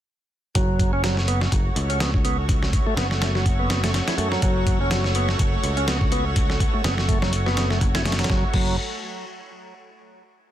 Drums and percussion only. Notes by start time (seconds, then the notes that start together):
0.55 kick, closed hi-hat
0.79 kick, closed hi-hat
1.04 snare, closed hi-hat
1.17 snare
1.28 closed hi-hat
1.41 snare
1.52 kick, closed hi-hat
1.76 closed hi-hat
1.90 closed hi-hat
2.00 snare, closed hi-hat
2.14 kick
2.25 closed hi-hat
2.49 kick, closed hi-hat
2.63 snare
2.73 kick, closed hi-hat
2.97 snare, closed hi-hat
3.11 snare
3.22 snare, closed hi-hat
3.35 snare
3.46 kick, closed hi-hat
3.70 snare, closed hi-hat
3.84 snare, closed hi-hat
3.94 snare, closed hi-hat
4.08 snare, closed hi-hat
4.18 closed hi-hat
4.32 snare
4.42 kick, closed hi-hat
4.67 kick, closed hi-hat
4.91 snare, closed hi-hat
5.04 snare
5.15 closed hi-hat
5.29 snare
5.39 kick, closed hi-hat
5.64 closed hi-hat
5.77 closed hi-hat
5.88 snare, closed hi-hat
6.01 kick
6.12 closed hi-hat
6.36 kick, closed hi-hat
6.50 snare
6.60 kick, closed hi-hat
6.84 snare, closed hi-hat
6.98 snare
7.09 kick, closed hi-hat
7.22 snare
7.33 closed hi-hat
7.46 snare
7.57 snare, closed hi-hat
7.71 snare
7.81 kick, closed hi-hat
7.95 snare, closed hi-hat
8.05 snare, closed hi-hat
8.12 snare, closed hi-hat
8.19 snare, closed hi-hat
8.24 snare, closed hi-hat
8.30 kick, snare
8.54 kick, crash